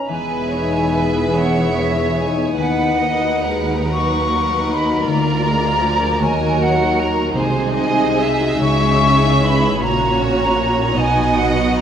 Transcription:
Already playing: G#2 B3 D#4 B4 D#5
0.08 E1 E2 E3 B3 G#4 B4 E5 G#5
0.30 B3
0.51 D#4 C#5
0.73 E4
0.95 B4
1.15 E4
1.36 B4 C#5 F#5
1.56 E4
1.76 B4 E5
1.96 E4
2.16 D#4 G#5
2.37 B3
2.57 D#2 D#3 B3 D#4 B4 F#5
2.78 B3
2.99 A#3 D#4 D#5
3.22 F#4
3.44 G#3 A#4 B4
3.66 F#4
3.86 F#3 B4 F#5
3.92 C#6
4.09 F#4
4.29 B4
4.49 F#4
4.69 D#4 B5
4.88 B3
5.07 D2 D3 A#3 F4 A#4 D5 A#5
5.27 D4
5.45 G#3 F4
5.64 G#4
5.82 F3 A#4
6.02 G#4
6.19 D#2 D#3 F#3 F#4 A#4 C#5 G#5
6.39 A#3
6.58 D#4 F#5
6.77 F#4
6.96 A#4 A#5
7.15 F#4
7.32 C2 C3 G#3 D#4 G#4 C5
7.36 G#5
7.54 C4
7.76 D#4 C5 D#5
7.97 F#4
8.17 G#4 D#5 E5
8.41 F#4
8.60 C#2 C#3 G#3 G#4 C#5 C#6
8.81 G#3
9.01 C#4
9.21 E4
9.41 B4 B5
9.61 E4
9.79 A#1 A#2 C#4 F#4 C#5
9.83 A#5
10.00 A#3
10.20 C#4
10.39 F#4
10.58 A#4
10.77 F#4
10.94 B1 B2 B3 D#4 F#4 D#5 F#5 G#5
11.16 F#3
11.35 B3 F#5
11.55 F#4
11.74 D#5 A#5

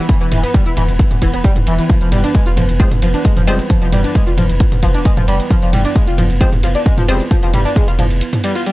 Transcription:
Already playing: E3 B3
0.09 E3, kick, closed hi-hat
0.21 E1 E3, closed hi-hat
0.32 E1 E3, mid tom, open hi-hat, ride
0.43 B3, closed hi-hat
0.54 G3, kick, closed hi-hat
0.66 E1 E4, closed hi-hat
0.77 E1 E3, mid tom, open hi-hat, ride
0.88 E1, closed hi-hat
0.99 kick, closed hi-hat
1.11 E1, closed hi-hat, mid tom
1.22 E1 E3, kick, open hi-hat, ride
1.33 B3, closed hi-hat
1.44 G3, kick, closed hi-hat
1.56 E1, closed hi-hat, mid tom
1.67 E1 E3, open hi-hat, ride
1.79 E3, closed hi-hat
1.89 F3, kick, closed hi-hat
2.01 F1 F3, closed hi-hat
2.12 F1 G3, mid tom, open hi-hat, ride
2.24 D4, closed hi-hat
2.35 G#3, kick, closed hi-hat
2.46 F1 F4, closed hi-hat
2.57 F1 F3, mid tom, open hi-hat, ride
2.69 F1, closed hi-hat
2.80 F3 G#3 C4, kick, closed hi-hat
2.91 F1, closed hi-hat, mid tom
3.02 F1 F3, open hi-hat, ride
3.14 D4, closed hi-hat
3.25 G#3, kick, closed hi-hat
3.37 F1 F3, closed hi-hat, mid tom
3.47 F1 F3 G3 G#3 C4, open hi-hat, ride
3.59 closed hi-hat
3.70 F3, kick, closed hi-hat
3.82 F1 F3, closed hi-hat
3.93 F1 G3, mid tom, open hi-hat, ride
4.04 D4, closed hi-hat
4.15 G#3, kick, closed hi-hat
4.27 F1 F4, closed hi-hat
4.38 F1 F3, mid tom, open hi-hat, ride
4.49 F1, closed hi-hat
4.60 kick, closed hi-hat
4.72 F1, closed hi-hat, mid tom
4.83 F1 F3, kick, open hi-hat, ride
4.94 D4, closed hi-hat
5.05 G#3, kick, closed hi-hat
5.17 F1 F3, closed hi-hat, mid tom
5.28 F1 G3, open hi-hat, ride
5.40 closed hi-hat
5.50 F3, kick, closed hi-hat
5.62 F1 F3, closed hi-hat
5.73 F1 G3, mid tom, open hi-hat, ride
5.85 D4, closed hi-hat
5.96 G#3, kick, closed hi-hat
6.07 F1 F4, closed hi-hat
6.18 F1 F3, mid tom, open hi-hat, ride
6.30 F1, closed hi-hat
6.41 F3 G#3 C4, kick, closed hi-hat
6.52 F1, closed hi-hat, mid tom
6.63 F1 F3, open hi-hat, ride
6.75 D4, closed hi-hat
6.86 G#3, kick, closed hi-hat
6.98 F1 F3, closed hi-hat, mid tom
7.08 F1 F3 G3 G#3 C4, open hi-hat, ride
7.20 closed hi-hat
7.31 F3, kick, closed hi-hat
7.43 F1 F3, closed hi-hat
7.53 F1 G3, mid tom, open hi-hat, ride
7.65 D4, closed hi-hat
7.76 G#3, kick, closed hi-hat
7.88 F1 F4, closed hi-hat
7.99 F1 F3, mid tom, open hi-hat, ride
8.10 F1, closed hi-hat
8.21 closed hi-hat
8.33 closed hi-hat, mid tom
8.44 G3, open hi-hat, ride
8.55 F4, closed hi-hat
8.66 G3, closed hi-hat

